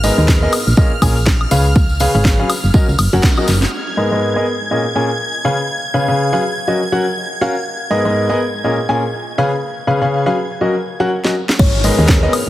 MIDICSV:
0, 0, Header, 1, 7, 480
1, 0, Start_track
1, 0, Tempo, 491803
1, 1716, Time_signature, 4, 2, 24, 8
1, 12193, End_track
2, 0, Start_track
2, 0, Title_t, "String machine"
2, 0, Program_c, 0, 50
2, 0, Note_on_c, 0, 89, 87
2, 3635, Note_on_c, 0, 92, 84
2, 3647, Note_off_c, 0, 89, 0
2, 10835, Note_off_c, 0, 92, 0
2, 11315, Note_on_c, 0, 89, 93
2, 12193, Note_off_c, 0, 89, 0
2, 12193, End_track
3, 0, Start_track
3, 0, Title_t, "Kalimba"
3, 0, Program_c, 1, 108
3, 11316, Note_on_c, 1, 73, 93
3, 11995, Note_off_c, 1, 73, 0
3, 12193, End_track
4, 0, Start_track
4, 0, Title_t, "Grand piano"
4, 0, Program_c, 2, 0
4, 35, Note_on_c, 2, 44, 84
4, 35, Note_on_c, 2, 59, 77
4, 35, Note_on_c, 2, 68, 78
4, 35, Note_on_c, 2, 70, 77
4, 35, Note_on_c, 2, 75, 100
4, 141, Note_off_c, 2, 44, 0
4, 141, Note_off_c, 2, 59, 0
4, 141, Note_off_c, 2, 68, 0
4, 141, Note_off_c, 2, 70, 0
4, 141, Note_off_c, 2, 75, 0
4, 174, Note_on_c, 2, 44, 78
4, 174, Note_on_c, 2, 59, 71
4, 174, Note_on_c, 2, 68, 74
4, 174, Note_on_c, 2, 70, 70
4, 174, Note_on_c, 2, 75, 86
4, 381, Note_off_c, 2, 44, 0
4, 381, Note_off_c, 2, 59, 0
4, 381, Note_off_c, 2, 68, 0
4, 381, Note_off_c, 2, 70, 0
4, 381, Note_off_c, 2, 75, 0
4, 414, Note_on_c, 2, 59, 93
4, 414, Note_on_c, 2, 68, 82
4, 414, Note_on_c, 2, 70, 85
4, 414, Note_on_c, 2, 75, 102
4, 499, Note_off_c, 2, 59, 0
4, 499, Note_off_c, 2, 68, 0
4, 499, Note_off_c, 2, 70, 0
4, 499, Note_off_c, 2, 75, 0
4, 755, Note_on_c, 2, 46, 78
4, 755, Note_on_c, 2, 61, 69
4, 755, Note_on_c, 2, 68, 67
4, 755, Note_on_c, 2, 70, 68
4, 755, Note_on_c, 2, 75, 84
4, 871, Note_off_c, 2, 46, 0
4, 871, Note_off_c, 2, 61, 0
4, 871, Note_off_c, 2, 68, 0
4, 871, Note_off_c, 2, 75, 0
4, 872, Note_off_c, 2, 70, 0
4, 995, Note_on_c, 2, 46, 85
4, 995, Note_on_c, 2, 61, 86
4, 995, Note_on_c, 2, 68, 81
4, 995, Note_on_c, 2, 70, 84
4, 995, Note_on_c, 2, 80, 93
4, 1112, Note_off_c, 2, 46, 0
4, 1112, Note_off_c, 2, 61, 0
4, 1112, Note_off_c, 2, 68, 0
4, 1112, Note_off_c, 2, 70, 0
4, 1112, Note_off_c, 2, 80, 0
4, 1475, Note_on_c, 2, 49, 99
4, 1475, Note_on_c, 2, 61, 94
4, 1475, Note_on_c, 2, 71, 93
4, 1476, Note_on_c, 2, 68, 98
4, 1476, Note_on_c, 2, 77, 115
4, 1592, Note_off_c, 2, 49, 0
4, 1592, Note_off_c, 2, 61, 0
4, 1592, Note_off_c, 2, 68, 0
4, 1592, Note_off_c, 2, 71, 0
4, 1592, Note_off_c, 2, 77, 0
4, 1956, Note_on_c, 2, 49, 87
4, 1956, Note_on_c, 2, 61, 78
4, 1956, Note_on_c, 2, 68, 81
4, 1956, Note_on_c, 2, 71, 77
4, 1956, Note_on_c, 2, 77, 98
4, 2061, Note_off_c, 2, 49, 0
4, 2061, Note_off_c, 2, 61, 0
4, 2061, Note_off_c, 2, 68, 0
4, 2061, Note_off_c, 2, 71, 0
4, 2061, Note_off_c, 2, 77, 0
4, 2094, Note_on_c, 2, 49, 82
4, 2094, Note_on_c, 2, 61, 73
4, 2094, Note_on_c, 2, 68, 75
4, 2094, Note_on_c, 2, 71, 72
4, 2094, Note_on_c, 2, 77, 90
4, 2301, Note_off_c, 2, 49, 0
4, 2301, Note_off_c, 2, 61, 0
4, 2301, Note_off_c, 2, 68, 0
4, 2301, Note_off_c, 2, 71, 0
4, 2301, Note_off_c, 2, 77, 0
4, 2334, Note_on_c, 2, 54, 92
4, 2334, Note_on_c, 2, 61, 85
4, 2334, Note_on_c, 2, 71, 84
4, 2334, Note_on_c, 2, 77, 103
4, 2335, Note_on_c, 2, 68, 86
4, 2419, Note_off_c, 2, 54, 0
4, 2419, Note_off_c, 2, 61, 0
4, 2419, Note_off_c, 2, 68, 0
4, 2419, Note_off_c, 2, 71, 0
4, 2419, Note_off_c, 2, 77, 0
4, 2675, Note_on_c, 2, 54, 74
4, 2675, Note_on_c, 2, 61, 67
4, 2675, Note_on_c, 2, 70, 71
4, 2676, Note_on_c, 2, 66, 69
4, 2676, Note_on_c, 2, 75, 84
4, 2792, Note_off_c, 2, 54, 0
4, 2792, Note_off_c, 2, 61, 0
4, 2792, Note_off_c, 2, 66, 0
4, 2792, Note_off_c, 2, 70, 0
4, 2792, Note_off_c, 2, 75, 0
4, 3055, Note_on_c, 2, 54, 98
4, 3055, Note_on_c, 2, 61, 92
4, 3055, Note_on_c, 2, 66, 92
4, 3055, Note_on_c, 2, 70, 96
4, 3055, Note_on_c, 2, 78, 113
4, 3139, Note_off_c, 2, 54, 0
4, 3139, Note_off_c, 2, 61, 0
4, 3139, Note_off_c, 2, 66, 0
4, 3139, Note_off_c, 2, 70, 0
4, 3139, Note_off_c, 2, 78, 0
4, 3295, Note_on_c, 2, 54, 71
4, 3295, Note_on_c, 2, 61, 67
4, 3295, Note_on_c, 2, 66, 68
4, 3295, Note_on_c, 2, 70, 69
4, 3295, Note_on_c, 2, 75, 81
4, 3379, Note_off_c, 2, 54, 0
4, 3379, Note_off_c, 2, 61, 0
4, 3379, Note_off_c, 2, 66, 0
4, 3379, Note_off_c, 2, 70, 0
4, 3379, Note_off_c, 2, 75, 0
4, 3875, Note_on_c, 2, 75, 88
4, 3876, Note_on_c, 2, 44, 79
4, 3876, Note_on_c, 2, 59, 72
4, 3876, Note_on_c, 2, 68, 75
4, 3876, Note_on_c, 2, 70, 75
4, 3981, Note_off_c, 2, 44, 0
4, 3981, Note_off_c, 2, 59, 0
4, 3981, Note_off_c, 2, 68, 0
4, 3981, Note_off_c, 2, 70, 0
4, 3981, Note_off_c, 2, 75, 0
4, 4015, Note_on_c, 2, 44, 75
4, 4015, Note_on_c, 2, 59, 70
4, 4015, Note_on_c, 2, 68, 68
4, 4015, Note_on_c, 2, 70, 67
4, 4015, Note_on_c, 2, 75, 81
4, 4221, Note_off_c, 2, 44, 0
4, 4221, Note_off_c, 2, 59, 0
4, 4221, Note_off_c, 2, 68, 0
4, 4221, Note_off_c, 2, 70, 0
4, 4221, Note_off_c, 2, 75, 0
4, 4255, Note_on_c, 2, 59, 86
4, 4255, Note_on_c, 2, 68, 82
4, 4255, Note_on_c, 2, 75, 91
4, 4256, Note_on_c, 2, 70, 76
4, 4339, Note_off_c, 2, 59, 0
4, 4339, Note_off_c, 2, 68, 0
4, 4339, Note_off_c, 2, 70, 0
4, 4339, Note_off_c, 2, 75, 0
4, 4596, Note_on_c, 2, 46, 72
4, 4596, Note_on_c, 2, 61, 67
4, 4596, Note_on_c, 2, 70, 64
4, 4596, Note_on_c, 2, 75, 78
4, 4597, Note_on_c, 2, 68, 63
4, 4712, Note_off_c, 2, 46, 0
4, 4712, Note_off_c, 2, 61, 0
4, 4712, Note_off_c, 2, 68, 0
4, 4712, Note_off_c, 2, 70, 0
4, 4712, Note_off_c, 2, 75, 0
4, 4836, Note_on_c, 2, 46, 82
4, 4836, Note_on_c, 2, 61, 78
4, 4836, Note_on_c, 2, 68, 75
4, 4836, Note_on_c, 2, 70, 78
4, 4836, Note_on_c, 2, 80, 94
4, 4952, Note_off_c, 2, 46, 0
4, 4952, Note_off_c, 2, 61, 0
4, 4952, Note_off_c, 2, 68, 0
4, 4952, Note_off_c, 2, 70, 0
4, 4952, Note_off_c, 2, 80, 0
4, 5316, Note_on_c, 2, 49, 94
4, 5316, Note_on_c, 2, 61, 88
4, 5316, Note_on_c, 2, 68, 88
4, 5316, Note_on_c, 2, 71, 82
4, 5316, Note_on_c, 2, 77, 103
4, 5432, Note_off_c, 2, 49, 0
4, 5432, Note_off_c, 2, 61, 0
4, 5432, Note_off_c, 2, 68, 0
4, 5432, Note_off_c, 2, 71, 0
4, 5432, Note_off_c, 2, 77, 0
4, 5796, Note_on_c, 2, 49, 80
4, 5796, Note_on_c, 2, 61, 74
4, 5796, Note_on_c, 2, 68, 72
4, 5796, Note_on_c, 2, 71, 77
4, 5796, Note_on_c, 2, 77, 90
4, 5901, Note_off_c, 2, 49, 0
4, 5902, Note_off_c, 2, 61, 0
4, 5902, Note_off_c, 2, 68, 0
4, 5902, Note_off_c, 2, 71, 0
4, 5902, Note_off_c, 2, 77, 0
4, 5935, Note_on_c, 2, 61, 68
4, 5936, Note_on_c, 2, 49, 75
4, 5936, Note_on_c, 2, 68, 67
4, 5936, Note_on_c, 2, 71, 67
4, 5936, Note_on_c, 2, 77, 81
4, 6142, Note_off_c, 2, 49, 0
4, 6142, Note_off_c, 2, 61, 0
4, 6142, Note_off_c, 2, 68, 0
4, 6142, Note_off_c, 2, 71, 0
4, 6142, Note_off_c, 2, 77, 0
4, 6175, Note_on_c, 2, 54, 83
4, 6175, Note_on_c, 2, 61, 79
4, 6175, Note_on_c, 2, 68, 82
4, 6175, Note_on_c, 2, 71, 80
4, 6175, Note_on_c, 2, 77, 102
4, 6259, Note_off_c, 2, 54, 0
4, 6259, Note_off_c, 2, 61, 0
4, 6259, Note_off_c, 2, 68, 0
4, 6259, Note_off_c, 2, 71, 0
4, 6259, Note_off_c, 2, 77, 0
4, 6516, Note_on_c, 2, 54, 69
4, 6516, Note_on_c, 2, 61, 63
4, 6516, Note_on_c, 2, 66, 63
4, 6516, Note_on_c, 2, 70, 64
4, 6516, Note_on_c, 2, 75, 77
4, 6632, Note_off_c, 2, 54, 0
4, 6632, Note_off_c, 2, 61, 0
4, 6632, Note_off_c, 2, 66, 0
4, 6632, Note_off_c, 2, 70, 0
4, 6632, Note_off_c, 2, 75, 0
4, 6756, Note_on_c, 2, 54, 81
4, 6756, Note_on_c, 2, 61, 77
4, 6756, Note_on_c, 2, 66, 74
4, 6756, Note_on_c, 2, 70, 75
4, 6756, Note_on_c, 2, 78, 96
4, 6872, Note_off_c, 2, 54, 0
4, 6872, Note_off_c, 2, 61, 0
4, 6872, Note_off_c, 2, 66, 0
4, 6872, Note_off_c, 2, 70, 0
4, 6872, Note_off_c, 2, 78, 0
4, 7235, Note_on_c, 2, 61, 93
4, 7235, Note_on_c, 2, 66, 83
4, 7235, Note_on_c, 2, 70, 86
4, 7235, Note_on_c, 2, 77, 104
4, 7352, Note_off_c, 2, 61, 0
4, 7352, Note_off_c, 2, 66, 0
4, 7352, Note_off_c, 2, 70, 0
4, 7352, Note_off_c, 2, 77, 0
4, 7715, Note_on_c, 2, 44, 77
4, 7715, Note_on_c, 2, 59, 75
4, 7715, Note_on_c, 2, 68, 76
4, 7715, Note_on_c, 2, 70, 76
4, 7715, Note_on_c, 2, 75, 93
4, 7821, Note_off_c, 2, 44, 0
4, 7821, Note_off_c, 2, 59, 0
4, 7821, Note_off_c, 2, 68, 0
4, 7821, Note_off_c, 2, 70, 0
4, 7821, Note_off_c, 2, 75, 0
4, 7854, Note_on_c, 2, 59, 69
4, 7854, Note_on_c, 2, 68, 69
4, 7854, Note_on_c, 2, 70, 70
4, 7854, Note_on_c, 2, 75, 82
4, 7855, Note_on_c, 2, 44, 75
4, 8061, Note_off_c, 2, 44, 0
4, 8061, Note_off_c, 2, 59, 0
4, 8061, Note_off_c, 2, 68, 0
4, 8061, Note_off_c, 2, 70, 0
4, 8061, Note_off_c, 2, 75, 0
4, 8094, Note_on_c, 2, 59, 88
4, 8094, Note_on_c, 2, 70, 81
4, 8094, Note_on_c, 2, 75, 94
4, 8095, Note_on_c, 2, 68, 79
4, 8179, Note_off_c, 2, 59, 0
4, 8179, Note_off_c, 2, 68, 0
4, 8179, Note_off_c, 2, 70, 0
4, 8179, Note_off_c, 2, 75, 0
4, 8435, Note_on_c, 2, 46, 72
4, 8435, Note_on_c, 2, 61, 63
4, 8435, Note_on_c, 2, 68, 64
4, 8435, Note_on_c, 2, 70, 68
4, 8435, Note_on_c, 2, 75, 74
4, 8552, Note_off_c, 2, 46, 0
4, 8552, Note_off_c, 2, 61, 0
4, 8552, Note_off_c, 2, 68, 0
4, 8552, Note_off_c, 2, 70, 0
4, 8552, Note_off_c, 2, 75, 0
4, 8675, Note_on_c, 2, 61, 82
4, 8675, Note_on_c, 2, 70, 80
4, 8675, Note_on_c, 2, 80, 91
4, 8676, Note_on_c, 2, 46, 89
4, 8676, Note_on_c, 2, 68, 74
4, 8792, Note_off_c, 2, 46, 0
4, 8792, Note_off_c, 2, 61, 0
4, 8792, Note_off_c, 2, 68, 0
4, 8792, Note_off_c, 2, 70, 0
4, 8792, Note_off_c, 2, 80, 0
4, 9156, Note_on_c, 2, 49, 94
4, 9156, Note_on_c, 2, 61, 88
4, 9156, Note_on_c, 2, 68, 90
4, 9156, Note_on_c, 2, 71, 90
4, 9156, Note_on_c, 2, 77, 105
4, 9272, Note_off_c, 2, 49, 0
4, 9272, Note_off_c, 2, 61, 0
4, 9272, Note_off_c, 2, 68, 0
4, 9272, Note_off_c, 2, 71, 0
4, 9272, Note_off_c, 2, 77, 0
4, 9636, Note_on_c, 2, 49, 81
4, 9636, Note_on_c, 2, 61, 76
4, 9636, Note_on_c, 2, 68, 74
4, 9636, Note_on_c, 2, 71, 76
4, 9636, Note_on_c, 2, 77, 87
4, 9741, Note_off_c, 2, 49, 0
4, 9741, Note_off_c, 2, 61, 0
4, 9741, Note_off_c, 2, 68, 0
4, 9741, Note_off_c, 2, 71, 0
4, 9741, Note_off_c, 2, 77, 0
4, 9775, Note_on_c, 2, 49, 79
4, 9775, Note_on_c, 2, 68, 69
4, 9775, Note_on_c, 2, 71, 70
4, 9775, Note_on_c, 2, 77, 83
4, 9776, Note_on_c, 2, 61, 70
4, 9981, Note_off_c, 2, 68, 0
4, 9982, Note_off_c, 2, 49, 0
4, 9982, Note_off_c, 2, 61, 0
4, 9982, Note_off_c, 2, 71, 0
4, 9982, Note_off_c, 2, 77, 0
4, 10015, Note_on_c, 2, 54, 85
4, 10015, Note_on_c, 2, 61, 82
4, 10015, Note_on_c, 2, 68, 81
4, 10015, Note_on_c, 2, 71, 82
4, 10015, Note_on_c, 2, 77, 97
4, 10099, Note_off_c, 2, 54, 0
4, 10099, Note_off_c, 2, 61, 0
4, 10099, Note_off_c, 2, 68, 0
4, 10099, Note_off_c, 2, 71, 0
4, 10099, Note_off_c, 2, 77, 0
4, 10356, Note_on_c, 2, 54, 71
4, 10356, Note_on_c, 2, 61, 67
4, 10356, Note_on_c, 2, 66, 68
4, 10356, Note_on_c, 2, 70, 65
4, 10356, Note_on_c, 2, 75, 81
4, 10472, Note_off_c, 2, 54, 0
4, 10472, Note_off_c, 2, 61, 0
4, 10472, Note_off_c, 2, 66, 0
4, 10472, Note_off_c, 2, 70, 0
4, 10472, Note_off_c, 2, 75, 0
4, 10735, Note_on_c, 2, 54, 94
4, 10735, Note_on_c, 2, 66, 86
4, 10735, Note_on_c, 2, 78, 107
4, 10736, Note_on_c, 2, 61, 90
4, 10736, Note_on_c, 2, 70, 90
4, 10819, Note_off_c, 2, 54, 0
4, 10819, Note_off_c, 2, 61, 0
4, 10819, Note_off_c, 2, 66, 0
4, 10819, Note_off_c, 2, 70, 0
4, 10819, Note_off_c, 2, 78, 0
4, 10975, Note_on_c, 2, 54, 68
4, 10975, Note_on_c, 2, 61, 68
4, 10975, Note_on_c, 2, 66, 69
4, 10975, Note_on_c, 2, 70, 66
4, 10975, Note_on_c, 2, 75, 76
4, 11059, Note_off_c, 2, 54, 0
4, 11059, Note_off_c, 2, 61, 0
4, 11059, Note_off_c, 2, 66, 0
4, 11059, Note_off_c, 2, 70, 0
4, 11059, Note_off_c, 2, 75, 0
4, 11555, Note_on_c, 2, 70, 83
4, 11556, Note_on_c, 2, 44, 92
4, 11556, Note_on_c, 2, 59, 81
4, 11556, Note_on_c, 2, 68, 79
4, 11556, Note_on_c, 2, 75, 99
4, 11661, Note_off_c, 2, 44, 0
4, 11661, Note_off_c, 2, 59, 0
4, 11661, Note_off_c, 2, 68, 0
4, 11661, Note_off_c, 2, 70, 0
4, 11661, Note_off_c, 2, 75, 0
4, 11695, Note_on_c, 2, 44, 80
4, 11695, Note_on_c, 2, 59, 70
4, 11695, Note_on_c, 2, 68, 76
4, 11695, Note_on_c, 2, 70, 74
4, 11695, Note_on_c, 2, 75, 86
4, 11901, Note_off_c, 2, 44, 0
4, 11901, Note_off_c, 2, 59, 0
4, 11901, Note_off_c, 2, 68, 0
4, 11901, Note_off_c, 2, 75, 0
4, 11902, Note_off_c, 2, 70, 0
4, 11935, Note_on_c, 2, 68, 84
4, 11935, Note_on_c, 2, 70, 85
4, 11936, Note_on_c, 2, 59, 94
4, 11936, Note_on_c, 2, 75, 109
4, 12019, Note_off_c, 2, 68, 0
4, 12019, Note_off_c, 2, 70, 0
4, 12019, Note_off_c, 2, 75, 0
4, 12020, Note_off_c, 2, 59, 0
4, 12193, End_track
5, 0, Start_track
5, 0, Title_t, "FM bass"
5, 0, Program_c, 3, 39
5, 0, Note_on_c, 3, 32, 95
5, 106, Note_off_c, 3, 32, 0
5, 175, Note_on_c, 3, 39, 104
5, 466, Note_off_c, 3, 39, 0
5, 655, Note_on_c, 3, 34, 91
5, 724, Note_off_c, 3, 34, 0
5, 995, Note_on_c, 3, 34, 99
5, 1426, Note_off_c, 3, 34, 0
5, 1476, Note_on_c, 3, 37, 83
5, 2026, Note_off_c, 3, 37, 0
5, 2095, Note_on_c, 3, 32, 104
5, 2386, Note_off_c, 3, 32, 0
5, 2575, Note_on_c, 3, 30, 88
5, 2645, Note_off_c, 3, 30, 0
5, 2814, Note_on_c, 3, 37, 93
5, 2884, Note_off_c, 3, 37, 0
5, 2916, Note_on_c, 3, 30, 97
5, 3012, Note_off_c, 3, 30, 0
5, 3055, Note_on_c, 3, 30, 103
5, 3125, Note_off_c, 3, 30, 0
5, 3395, Note_on_c, 3, 30, 106
5, 3574, Note_off_c, 3, 30, 0
5, 11316, Note_on_c, 3, 32, 95
5, 11626, Note_off_c, 3, 32, 0
5, 11695, Note_on_c, 3, 39, 101
5, 11986, Note_off_c, 3, 39, 0
5, 12193, End_track
6, 0, Start_track
6, 0, Title_t, "Downlifter"
6, 0, Program_c, 4, 103
6, 11315, Note_on_c, 4, 60, 73
6, 12193, Note_off_c, 4, 60, 0
6, 12193, End_track
7, 0, Start_track
7, 0, Title_t, "Drums"
7, 35, Note_on_c, 9, 46, 94
7, 36, Note_on_c, 9, 54, 78
7, 133, Note_off_c, 9, 46, 0
7, 134, Note_off_c, 9, 54, 0
7, 179, Note_on_c, 9, 54, 39
7, 274, Note_on_c, 9, 38, 119
7, 275, Note_on_c, 9, 36, 110
7, 276, Note_off_c, 9, 54, 0
7, 276, Note_on_c, 9, 54, 54
7, 372, Note_off_c, 9, 38, 0
7, 373, Note_off_c, 9, 36, 0
7, 374, Note_off_c, 9, 54, 0
7, 512, Note_on_c, 9, 54, 88
7, 515, Note_on_c, 9, 46, 96
7, 515, Note_on_c, 9, 76, 86
7, 609, Note_off_c, 9, 54, 0
7, 612, Note_off_c, 9, 46, 0
7, 612, Note_off_c, 9, 76, 0
7, 656, Note_on_c, 9, 54, 38
7, 754, Note_off_c, 9, 54, 0
7, 755, Note_on_c, 9, 36, 111
7, 853, Note_off_c, 9, 36, 0
7, 995, Note_on_c, 9, 36, 60
7, 995, Note_on_c, 9, 46, 95
7, 995, Note_on_c, 9, 76, 85
7, 996, Note_on_c, 9, 54, 89
7, 1092, Note_off_c, 9, 46, 0
7, 1092, Note_off_c, 9, 76, 0
7, 1093, Note_off_c, 9, 36, 0
7, 1093, Note_off_c, 9, 54, 0
7, 1139, Note_on_c, 9, 54, 37
7, 1234, Note_on_c, 9, 38, 110
7, 1235, Note_on_c, 9, 36, 116
7, 1237, Note_off_c, 9, 54, 0
7, 1332, Note_off_c, 9, 38, 0
7, 1333, Note_off_c, 9, 36, 0
7, 1375, Note_on_c, 9, 76, 69
7, 1472, Note_off_c, 9, 76, 0
7, 1474, Note_on_c, 9, 54, 85
7, 1475, Note_on_c, 9, 46, 97
7, 1572, Note_off_c, 9, 54, 0
7, 1573, Note_off_c, 9, 46, 0
7, 1611, Note_on_c, 9, 54, 37
7, 1708, Note_off_c, 9, 54, 0
7, 1712, Note_on_c, 9, 54, 48
7, 1715, Note_on_c, 9, 36, 116
7, 1809, Note_off_c, 9, 54, 0
7, 1813, Note_off_c, 9, 36, 0
7, 1848, Note_on_c, 9, 54, 34
7, 1946, Note_off_c, 9, 54, 0
7, 1950, Note_on_c, 9, 54, 85
7, 1955, Note_on_c, 9, 46, 97
7, 2047, Note_off_c, 9, 54, 0
7, 2053, Note_off_c, 9, 46, 0
7, 2095, Note_on_c, 9, 54, 40
7, 2192, Note_off_c, 9, 54, 0
7, 2195, Note_on_c, 9, 36, 113
7, 2195, Note_on_c, 9, 38, 125
7, 2195, Note_on_c, 9, 54, 51
7, 2292, Note_off_c, 9, 38, 0
7, 2293, Note_off_c, 9, 36, 0
7, 2293, Note_off_c, 9, 54, 0
7, 2436, Note_on_c, 9, 46, 105
7, 2436, Note_on_c, 9, 76, 81
7, 2438, Note_on_c, 9, 54, 92
7, 2533, Note_off_c, 9, 46, 0
7, 2533, Note_off_c, 9, 76, 0
7, 2536, Note_off_c, 9, 54, 0
7, 2575, Note_on_c, 9, 54, 43
7, 2671, Note_off_c, 9, 54, 0
7, 2671, Note_on_c, 9, 54, 54
7, 2675, Note_on_c, 9, 36, 112
7, 2769, Note_off_c, 9, 54, 0
7, 2773, Note_off_c, 9, 36, 0
7, 2820, Note_on_c, 9, 54, 35
7, 2912, Note_off_c, 9, 54, 0
7, 2912, Note_on_c, 9, 54, 79
7, 2915, Note_on_c, 9, 46, 104
7, 2915, Note_on_c, 9, 76, 83
7, 3010, Note_off_c, 9, 54, 0
7, 3013, Note_off_c, 9, 46, 0
7, 3013, Note_off_c, 9, 76, 0
7, 3050, Note_on_c, 9, 54, 43
7, 3148, Note_off_c, 9, 54, 0
7, 3155, Note_on_c, 9, 36, 120
7, 3155, Note_on_c, 9, 38, 119
7, 3156, Note_on_c, 9, 54, 49
7, 3252, Note_off_c, 9, 38, 0
7, 3253, Note_off_c, 9, 36, 0
7, 3253, Note_off_c, 9, 54, 0
7, 3287, Note_on_c, 9, 54, 32
7, 3294, Note_on_c, 9, 76, 65
7, 3385, Note_off_c, 9, 54, 0
7, 3391, Note_on_c, 9, 54, 82
7, 3392, Note_off_c, 9, 76, 0
7, 3395, Note_on_c, 9, 38, 61
7, 3395, Note_on_c, 9, 46, 100
7, 3489, Note_off_c, 9, 54, 0
7, 3492, Note_off_c, 9, 38, 0
7, 3492, Note_off_c, 9, 46, 0
7, 3533, Note_on_c, 9, 38, 68
7, 3533, Note_on_c, 9, 54, 38
7, 3630, Note_off_c, 9, 54, 0
7, 3631, Note_off_c, 9, 38, 0
7, 3635, Note_on_c, 9, 49, 78
7, 3733, Note_off_c, 9, 49, 0
7, 10975, Note_on_c, 9, 38, 67
7, 11072, Note_off_c, 9, 38, 0
7, 11215, Note_on_c, 9, 38, 90
7, 11312, Note_off_c, 9, 38, 0
7, 11315, Note_on_c, 9, 36, 123
7, 11315, Note_on_c, 9, 49, 106
7, 11413, Note_off_c, 9, 36, 0
7, 11413, Note_off_c, 9, 49, 0
7, 11555, Note_on_c, 9, 46, 100
7, 11653, Note_off_c, 9, 46, 0
7, 11795, Note_on_c, 9, 36, 115
7, 11795, Note_on_c, 9, 38, 127
7, 11893, Note_off_c, 9, 36, 0
7, 11893, Note_off_c, 9, 38, 0
7, 12036, Note_on_c, 9, 46, 94
7, 12036, Note_on_c, 9, 76, 79
7, 12133, Note_off_c, 9, 46, 0
7, 12133, Note_off_c, 9, 76, 0
7, 12193, End_track
0, 0, End_of_file